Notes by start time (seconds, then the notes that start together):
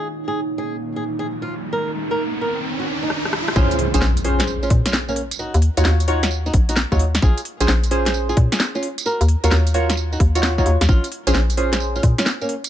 Already playing: A#3 D#4 G#4 C#5 F5, riser
0.28 G#4
0.58 G#4
0.96 G#4
1.19 G#4
1.42 F4
1.50 D#4
1.73 A#4
2.11 A#4
2.41 A#4
2.80 F#4
3.03 D#4
3.10 cross-stick
3.25 cross-stick
3.33 cross-stick
3.48 cross-stick
3.56 A#1 C#4 F4 G#4 C5, kick, tambourine, impact
3.71 closed hi-hat, tambourine
3.79 open hi-hat
3.94 A#1 C#4 F4 G#4 C5, closed hi-hat, tambourine
4.02 A#1, snare, tambourine
4.17 closed hi-hat, tambourine
4.25 C#4 F4 G#4 C5, open hi-hat
4.40 snare, closed hi-hat, tambourine
4.47 tambourine
4.63 C#4 F4, tambourine
4.70 A#2, kick, open hi-hat
4.85 C#4 F4, snare, closed hi-hat, tambourine
4.93 snare, tambourine
5.09 A#3 C#4, tambourine
5.16 open hi-hat
5.31 closed hi-hat, tambourine
5.39 D#4 F#4, tambourine
5.54 D#2, closed hi-hat, tambourine
5.62 open hi-hat
5.77 D#2 D#4 F4 F#4 C#5, closed hi-hat, tambourine
5.85 D#2, snare, tambourine
6.00 closed hi-hat, tambourine
6.08 D#4 F4 F#4 C#5, open hi-hat
6.23 snare, closed hi-hat, tambourine
6.31 tambourine
6.46 D#4 F#4, tambourine
6.54 A#1, kick, open hi-hat
6.69 D#4 F#4, closed hi-hat, tambourine
6.76 snare, tambourine
6.92 D#2 F#3 D#4 F4 F#4 C#5, kick, tambourine
6.99 open hi-hat
7.15 snare, closed hi-hat, tambourine
7.22 A#1 F4 G#4, kick, tambourine
7.38 closed hi-hat, tambourine
7.45 open hi-hat
7.60 A#1 C#4 F4 G#4 C5, closed hi-hat, tambourine
7.68 A#1, snare, tambourine
7.84 closed hi-hat, tambourine
7.91 C#4 F4 G#4 C5, open hi-hat
8.06 snare, closed hi-hat, tambourine
8.14 tambourine
8.29 F4 G#4, tambourine
8.37 A#2, kick, open hi-hat
8.52 F4 G#4, snare, closed hi-hat, tambourine
8.60 snare, tambourine
8.75 C#4 F4, tambourine
8.83 open hi-hat
8.98 closed hi-hat, tambourine
9.06 F#4 A#4, tambourine
9.21 D#2, closed hi-hat, tambourine
9.29 open hi-hat
9.44 D#2 F4 F#4 A#4 C#5, closed hi-hat, tambourine
9.51 D#2, snare, tambourine
9.67 closed hi-hat, tambourine
9.74 F4 F#4 A#4 C#5, open hi-hat
9.90 snare, closed hi-hat, tambourine
9.97 tambourine
10.12 D#4 F#4, tambourine
10.20 D#2, kick, open hi-hat
10.35 F#3 D#4 F4 F#4 C#5, closed hi-hat, tambourine
10.43 snare, open hi-hat, tambourine
10.58 F#3 D#4 F4 F#4 C#5, kick, tambourine
10.66 D#2, open hi-hat
10.81 D#2, snare, closed hi-hat, tambourine
10.89 A#1 C#4 F4, kick, tambourine
11.04 closed hi-hat, tambourine
11.12 open hi-hat
11.27 A#1 C#4 F4 G#4 C5, closed hi-hat, tambourine
11.35 A#1, snare, tambourine
11.50 closed hi-hat, tambourine
11.57 C#4 F4 G#4 C5, open hi-hat
11.73 snare, closed hi-hat, tambourine
11.80 tambourine
11.96 C#4 F4, tambourine
12.03 A#2, kick, open hi-hat
12.18 C#4 F4, snare, closed hi-hat, tambourine
12.26 snare, tambourine
12.41 A#3 C#4, tambourine
12.49 open hi-hat
12.64 closed hi-hat, tambourine